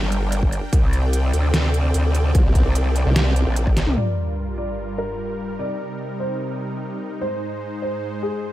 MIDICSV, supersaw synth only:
0, 0, Header, 1, 2, 480
1, 0, Start_track
1, 0, Tempo, 405405
1, 861, Time_signature, 4, 2, 24, 8
1, 10094, End_track
2, 0, Start_track
2, 0, Title_t, "Supersaw synth"
2, 0, Program_c, 0, 81
2, 0, Note_on_c, 0, 55, 81
2, 0, Note_on_c, 0, 62, 74
2, 0, Note_on_c, 0, 70, 77
2, 0, Note_on_c, 0, 79, 87
2, 821, Note_off_c, 0, 55, 0
2, 821, Note_off_c, 0, 62, 0
2, 821, Note_off_c, 0, 70, 0
2, 859, Note_on_c, 0, 48, 80
2, 859, Note_on_c, 0, 60, 75
2, 860, Note_on_c, 0, 74, 76
2, 4652, Note_off_c, 0, 79, 0
2, 4662, Note_off_c, 0, 48, 0
2, 4662, Note_off_c, 0, 60, 0
2, 4662, Note_off_c, 0, 74, 0
2, 4701, Note_on_c, 0, 55, 70
2, 4701, Note_on_c, 0, 70, 87
2, 4702, Note_on_c, 0, 43, 76
2, 4702, Note_on_c, 0, 65, 71
2, 6602, Note_off_c, 0, 43, 0
2, 6602, Note_off_c, 0, 65, 0
2, 6620, Note_on_c, 0, 48, 78
2, 6620, Note_on_c, 0, 63, 73
2, 8503, Note_off_c, 0, 55, 0
2, 8503, Note_off_c, 0, 70, 0
2, 8521, Note_off_c, 0, 48, 0
2, 8541, Note_on_c, 0, 72, 86
2, 8542, Note_on_c, 0, 44, 80
2, 8542, Note_on_c, 0, 56, 72
2, 10094, Note_off_c, 0, 44, 0
2, 10094, Note_off_c, 0, 56, 0
2, 10094, Note_off_c, 0, 63, 0
2, 10094, Note_off_c, 0, 72, 0
2, 10094, End_track
0, 0, End_of_file